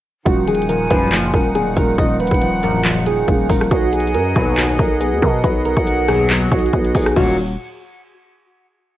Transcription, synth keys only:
0.25 0.43 F#4 loud
0.48 0.65 G#4 medium
0.69 0.87 A#4 medium
0.90 1.08 B4 medium
1.34 1.52 A#4 medium
1.55 1.73 G#4 medium
1.77 1.95 A#4 medium
1.99 2.16 D#5 medium
2.20 2.61 B4 medium
2.63 2.81 A#4 medium
3.07 3.47 G#4 medium
3.50 3.67 A#4 medium
3.71 3.89 F#4 loud
3.93 4.11 G#4 medium
4.15 4.32 A#4 medium
4.36 4.54 B4 medium
4.79 4.97 A#4 medium
5.01 5.18 G#4 medium
5.22 5.40 A#4 medium
5.44 5.61 B4 medium
5.65 6.06 A#4 medium
6.08 6.26 G#4 medium
6.52 6.92 F#4 medium
6.95 7.13 G#4 medium
7.16 7.37 F#4 medium

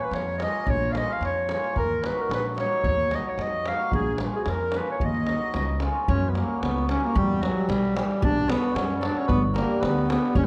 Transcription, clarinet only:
0.05 0.16 B4 medium
0.15 0.42 C#5 medium
0.43 0.71 D#5 loud
0.70 0.94 C#5 loud
0.92 0.98 F5 medium
0.97 1.14 D#5 loud
1.13 1.24 F5 medium
1.26 1.50 C#5 medium
1.53 1.77 C#5 medium
1.79 2.08 A#4 loud
2.06 2.23 B4 medium
2.21 2.32 A#4 medium
2.34 2.46 B4 medium
2.60 2.84 C#5 medium
2.88 3.16 C#5 loud
3.15 3.30 D#5 medium
3.29 3.44 C#5 medium
3.42 3.70 D#5 medium
3.68 3.93 F5 loud
3.94 4.19 G#4 medium
4.36 4.46 F#4 medium
4.36 4.40 G#4 medium
4.44 4.51 G#4 medium
4.50 4.79 A#4 medium
4.77 4.90 B4 medium
4.91 5.07 C#5 medium
5.05 5.84 D#5 medium
6.09 6.32 C#4 loud
6.30 6.38 B3 medium
6.37 6.66 A#3 medium
6.64 6.89 B3 medium
6.90 7.07 C#4 loud
7.05 7.18 A#3 medium
7.17 7.44 G3 loud
7.42 7.70 F#3 medium
7.69 7.96 G3 loud
7.97 8.26 G3 loud
8.24 8.52 D4 loud
8.50 8.77 B3 loud
8.75 9.02 C#4 medium
9.05 9.21 D4 loud
9.19 9.30 C#4 medium
9.31 9.43 B3 loud
9.57 9.86 A#3 medium
9.85 10.10 B3 medium
10.11 10.35 B3 loud
10.38 10.46 C#4 loud

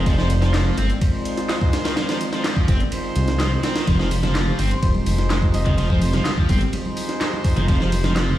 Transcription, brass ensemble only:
0.00 0.16 G#3 loud
0.00 0.16 D#4 medium
0.00 0.16 F4 medium
0.00 0.16 C5 loud
0.18 0.37 G#3 loud
0.18 0.37 D#4 medium
0.18 0.37 F4 medium
0.18 0.37 C5 loud
0.42 0.54 G#3 medium
0.42 0.54 D#4 medium
0.42 0.54 F4 medium
0.42 0.54 C5 loud
1.02 2.06 G#3 loud
1.02 2.06 D#4 medium
1.02 2.06 F4 medium
1.02 2.06 C5 loud
2.09 2.28 G#3 medium
2.09 2.28 D#4 medium
2.09 2.28 F4 medium
2.09 2.28 C5 loud
2.33 2.45 G#3 medium
2.33 2.45 D#4 medium
2.33 2.44 F4 medium
2.33 2.44 C5 loud
2.92 3.50 G#3 medium
2.92 3.50 D#4 medium
2.92 3.50 F4 medium
2.92 3.50 C5 loud
3.52 3.62 G#3 medium
3.52 3.62 D#4 medium
3.52 3.62 F4 medium
3.52 3.62 C5 medium
3.64 3.83 G#3 medium
3.64 3.83 D#4 medium
3.64 3.83 F4 medium
3.64 3.83 C5 medium
4.00 4.18 G#3 medium
4.00 4.18 D#4 medium
4.00 4.18 F4 medium
4.00 4.18 C5 loud
4.24 4.35 G#3 medium
4.24 4.35 D#4 medium
4.24 4.35 F4 medium
4.24 4.35 C5 loud
4.83 5.87 G#3 loud
4.83 5.87 D#4 medium
4.83 5.87 F4 medium
4.83 5.87 C5 loud
5.90 6.09 G#3 loud
5.90 6.09 D#4 medium
5.90 6.09 F4 medium
5.90 6.09 C5 loud
6.14 6.25 G#3 medium
6.14 6.25 D#4 medium
6.14 6.25 F4 medium
6.14 6.26 C5 loud
6.73 7.78 G#3 loud
6.73 7.78 D#4 medium
6.73 7.78 F4 medium
6.73 7.78 C5 loud
7.80 7.99 G#3 loud
7.80 7.99 D#4 medium
7.80 7.99 F4 medium
7.80 7.99 C5 loud
8.04 8.16 G#3 loud
8.04 8.16 D#4 medium
8.04 8.16 F4 medium
8.04 8.16 C5 loud

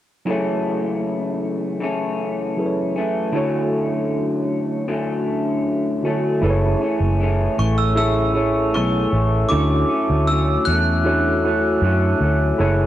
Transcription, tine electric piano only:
0.25 2.53 F#3 medium
0.25 2.54 E4 medium
0.25 2.55 G#4 medium
0.25 2.55 A4 medium
0.30 2.56 C#5 medium
2.57 3.35 F#3 soft
2.57 3.32 E4 soft
2.57 3.35 G#4 soft
2.57 3.35 A4 soft
2.57 2.66 B4 soft
2.66 3.36 C#5 medium
3.32 5.99 D3 medium
3.32 6.00 E4 medium
3.32 6.01 F#4 medium
3.32 6.01 A4 medium
3.37 6.02 C#5 medium
6.03 6.42 D3 medium
6.03 6.40 E4 soft
6.03 6.43 F#4 soft
6.03 6.42 A4 soft
6.03 6.44 C#5 medium
6.42 7.87 E4 medium
6.42 7.87 G#4 medium
6.42 7.88 A4 medium
6.42 6.50 B4 medium
6.50 7.91 C#5 medium
7.95 8.33 E4 medium
7.95 8.33 G#4 medium
7.95 8.33 A4 medium
7.95 8.34 E5 medium
8.34 9.43 E4 medium
8.34 9.44 G#4 medium
8.34 9.44 A4 soft
8.34 9.45 C#5 medium
9.50 10.97 C#4 medium
9.50 10.95 E4 medium
9.50 10.96 F#4 medium
9.50 10.96 A4 medium
11.04 11.41 E4 medium
11.04 11.41 F#4 medium
11.04 11.42 A4 medium
11.04 11.42 C#5 medium
11.44 12.52 E4 medium
11.44 12.53 F#4 medium
11.44 12.53 A4 medium
11.44 12.54 C#5 medium
12.58 12.87 E4 medium
12.58 12.87 G#4 medium
12.58 12.87 A4 medium
12.58 12.87 C#5 medium

